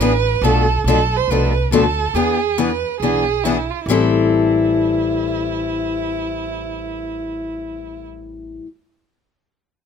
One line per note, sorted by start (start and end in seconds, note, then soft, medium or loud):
0.00 0.36 A1 medium
0.00 0.12 E3 medium
0.00 0.12 B3 medium
0.00 0.12 D4 medium
0.00 0.13 G#4 loud
0.00 0.45 B4 loud
0.41 0.76 B1 medium
0.41 0.65 B2 medium
0.41 0.66 F3 medium
0.41 0.66 A3 medium
0.41 0.66 D4 medium
0.41 0.86 A4 medium
0.41 0.66 A4 medium
0.84 1.21 B1 medium
0.84 0.98 B2 medium
0.84 0.99 F3 medium
0.84 0.98 A3 medium
0.84 1.18 A4 medium
0.88 0.99 D4 medium
0.88 0.99 A4 medium
1.16 1.31 C5 medium
1.28 1.65 C2 medium
1.28 1.52 B2 medium
1.28 1.52 F3 medium
1.28 1.52 A3 medium
1.28 1.72 B4 medium
1.32 1.52 D4 medium
1.32 1.52 A4 medium
1.71 2.08 D2 medium
1.71 1.84 B2 medium
1.71 1.84 F3 medium
1.71 1.84 A3 medium
1.71 1.84 D4 medium
1.71 2.17 A4 medium
1.71 1.84 A4 medium
2.14 2.83 E2 medium
2.14 2.37 E3 medium
2.14 2.37 B3 medium
2.14 2.38 D4 medium
2.14 2.60 G#4 medium
2.14 2.38 G#4 medium
2.58 2.69 E3 medium
2.58 2.69 B3 medium
2.58 2.70 D4 medium
2.58 2.70 G#4 medium
2.58 3.00 B4 medium
3.00 3.69 B1 medium
3.00 3.24 E3 medium
3.00 3.24 B3 medium
3.00 3.24 D4 medium
3.00 3.45 G#4 medium
3.00 3.24 G#4 medium
3.44 3.56 E3 medium
3.44 3.56 B3 medium
3.44 3.56 D4 medium
3.44 3.72 E4 medium
3.44 3.57 G#4 medium
3.70 3.85 F4 medium
3.86 8.59 A1 medium
3.86 8.66 A2 medium
3.86 8.66 E3 medium
3.86 8.06 E4 medium
3.90 8.67 G3 medium
3.90 8.67 C4 medium
3.90 8.68 E4 medium
3.90 8.68 A4 medium